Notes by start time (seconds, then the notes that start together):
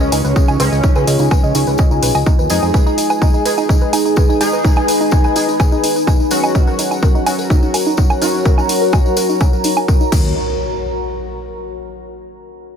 Already playing: C#3 G#3 C#4 F4 G#4 C#5 G#5
0.00 C#2 D#5, tambourine
0.12 C#2 D#4, open hi-hat, tambourine, low woodblock
0.24 C#2 B4, tambourine
0.36 D#5, kick, tambourine
0.48 C#2 D#4, tambourine, low woodblock
0.60 C#2 C#3 G#3 C#4 B4, open hi-hat, tambourine
0.72 C#2 D#5, tambourine
0.83 D#4 D#5, kick, tambourine
0.95 C#2 B4, tambourine, low woodblock
1.07 C#2 D#5, open hi-hat, tambourine
1.19 C#2 D#4, tambourine
1.31 B4, kick, tambourine, low woodblock
1.43 C#2 D#5, tambourine
1.55 C#2 C#3 G#3 C#4 D#4, open hi-hat, tambourine
1.67 C#2 B4, tambourine
1.78 D#5, kick, tambourine, low woodblock
1.91 C#2 D#4, tambourine
2.02 B1 B4, open hi-hat, tambourine
2.15 C#2 D#5, tambourine, low woodblock
2.26 D#4, kick, tambourine
2.39 D#2 B4, tambourine
2.50 F2 G#3 D#4 G#4 D#5, open hi-hat, tambourine
2.62 F2 D#4, tambourine, low woodblock
2.74 D#4 B4 G#5, kick, tambourine, low woodblock
2.86 D#4, tambourine
2.98 D#4, open hi-hat, tambourine
3.10 B4, tambourine, low woodblock
3.22 D#4, kick, tambourine
3.34 D#4, tambourine
3.45 G#3 D#4 G#4 B4, open hi-hat, tambourine
3.58 D#4, tambourine, low woodblock
3.69 D#4, kick, tambourine
3.81 B4, tambourine
3.93 D#4, open hi-hat, tambourine, low woodblock
4.05 D#4, tambourine
4.16 B4, kick, tambourine
4.29 D#4, tambourine
4.41 G#3 D#4 G#4, open hi-hat, tambourine, low woodblock
4.53 B4, tambourine
4.64 D#4, kick, tambourine
4.76 D#4, tambourine, low woodblock
4.88 B4, open hi-hat, tambourine
5.01 D#4, tambourine
5.11 D#4, kick, tambourine
5.24 B4, tambourine, low woodblock
5.36 G#3 D#4 G#4, open hi-hat, tambourine
5.48 D#4, tambourine
5.60 B4, kick, tambourine, low woodblock
5.72 D#4, tambourine
5.84 D#4, open hi-hat, tambourine
5.96 B4, tambourine
6.07 D#4, kick, tambourine, low woodblock
6.20 D#4, tambourine
6.31 F#3 C#4 F#4 B4, open hi-hat, tambourine
6.44 D#4, tambourine, low woodblock
6.55 D#4 F#4 A#4 C#5 A#5, kick, tambourine
6.67 A#4, tambourine
6.79 D#4, open hi-hat, tambourine
6.91 D#4, tambourine, low woodblock
7.02 A#4, kick, tambourine
7.15 D#4, tambourine
7.26 F#3 C#4 D#4 F#4, open hi-hat, tambourine, low woodblock
7.39 A#4, tambourine
7.50 D#4, kick, tambourine
7.63 D#4, tambourine
7.74 A#4, open hi-hat, tambourine, low woodblock
7.85 D#4, tambourine
7.97 D#4, kick, tambourine
8.10 A#4, tambourine, low woodblock
8.22 F#3 C#4 D#4 F#4, open hi-hat, tambourine
8.34 D#4, tambourine
8.45 A#4, kick, tambourine
8.58 D#4, tambourine, low woodblock
8.69 D#4, open hi-hat, tambourine
8.82 A#4, tambourine
8.93 D#4, kick, tambourine, low woodblock
9.05 D#4, tambourine
9.17 F#3 C#4 F#4 A#4, open hi-hat, tambourine
9.29 D#4, tambourine
9.40 D#4, kick, tambourine, low woodblock
9.53 A#4, tambourine
9.64 D#4, open hi-hat, tambourine
9.77 D#4, tambourine, low woodblock
9.88 A#4, kick, tambourine
10.01 D#4, tambourine
10.12 D#2 D#3 A#3 D#4, kick, crash, tambourine, impact
10.24 tambourine